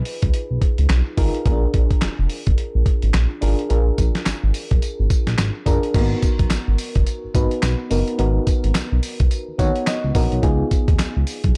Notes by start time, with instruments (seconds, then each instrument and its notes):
Already playing: fm electric piano D#4 F4 G#4 B4
0.05 open hi-hat
0.22 analog synth bass C#2, kick, closed hi-hat
0.34 closed hi-hat
0.51 analog synth bass B1
0.61 kick, closed hi-hat
0.78 analog synth bass C#2, closed hi-hat
0.89 analog synth bass B1, snare, clap, closed hi-hat
1.17 analog synth bass G#1, fm electric piano D#4 F4 G#4 A#4, kick, open hi-hat
1.34 closed hi-hat
1.45 analog synth bass A#1, fm electric piano B3 F4 G#4 A#4, kick, closed hi-hat
1.52 fm electric piano D4
1.74 analog synth bass A#1, kick, closed hi-hat
1.91 kick, closed hi-hat
2.01 analog synth bass F1, snare, clap, closed hi-hat
2.19 analog synth bass F1
2.30 open hi-hat
2.46 analog synth bass G#1, kick, closed hi-hat
2.58 closed hi-hat
2.75 analog synth bass A#1
2.86 kick, closed hi-hat
3.02 analog synth bass G#1, closed hi-hat
3.14 analog synth bass A#1, snare, clap, closed hi-hat
3.41 analog synth bass G#1, fm electric piano D4 F4 G#4 A#4, open hi-hat
3.59 closed hi-hat
3.69 analog synth bass A#1, fm electric piano D4 F4 G#4 A#4, closed hi-hat
3.98 analog synth bass A#1, kick, closed hi-hat, tambourine
4.15 snare, closed hi-hat
4.26 analog synth bass G#1, snare, clap, closed hi-hat, tambourine
4.44 analog synth bass G#1
4.54 open hi-hat, tambourine
4.71 analog synth bass A#1, kick, closed hi-hat
4.82 closed hi-hat, tambourine
5.00 analog synth bass G#1
5.10 kick, closed hi-hat, tambourine
5.27 analog synth bass A#1, snare, closed hi-hat
5.38 analog synth bass G#1, snare, clap, closed hi-hat, tambourine
5.66 analog synth bass F#1, fm electric piano D4 F4 G#4 A#4, kick, closed hi-hat, tambourine
5.83 closed hi-hat
5.94 analog synth bass G#1, fm electric piano A#3 D#4 F#4 A#4, kick, closed hi-hat, crash
6.01 fm electric piano B3
6.22 kick, closed hi-hat, tambourine
6.39 analog synth bass B1, kick, closed hi-hat
6.50 analog synth bass G#1, snare, clap, closed hi-hat, tambourine
6.68 analog synth bass G#1
6.78 open hi-hat, tambourine
6.95 analog synth bass F#1, kick, closed hi-hat
7.07 closed hi-hat, tambourine
7.24 analog synth bass G#1
7.34 analog synth bass G#1, fm electric piano B3 D#4 F#4 B4, kick, closed hi-hat, tambourine
7.51 closed hi-hat
7.62 analog synth bass B1, snare, clap, closed hi-hat, tambourine
7.90 analog synth bass F#1, fm electric piano B3 D#4 F#4 A#4, open hi-hat, tambourine
8.08 closed hi-hat
8.18 analog synth bass G#1, fm electric piano B3 D#4 F#4 A#4, closed hi-hat
8.47 kick, closed hi-hat, tambourine
8.64 analog synth bass G#1, closed hi-hat
8.75 analog synth bass B1, snare, clap, closed hi-hat, tambourine
8.92 analog synth bass B1
9.03 open hi-hat, tambourine
9.20 analog synth bass B1, kick, closed hi-hat
9.31 closed hi-hat, tambourine
9.48 analog synth bass D#2
9.58 analog synth bass D#2, fm electric piano B3 D#4 F#4 C#5 F#5, kick, closed hi-hat, tambourine
9.76 closed hi-hat
9.87 fm electric piano D#5, snare, clap, closed hi-hat, tambourine
10.04 analog synth bass C#2
10.14 analog synth bass A#1, fm electric piano B3 D#4 F#4 A#4, kick, open hi-hat, tambourine
10.32 analog synth bass B1, closed hi-hat
10.42 analog synth bass C#2, fm electric piano B3 D#4 F4 G#4, kick, closed hi-hat
10.71 kick, closed hi-hat, tambourine
10.88 analog synth bass D#2, kick, closed hi-hat
10.99 analog synth bass C#2, snare, clap, closed hi-hat, tambourine
11.17 analog synth bass C#2
11.27 open hi-hat, tambourine
11.44 analog synth bass B1, kick, closed hi-hat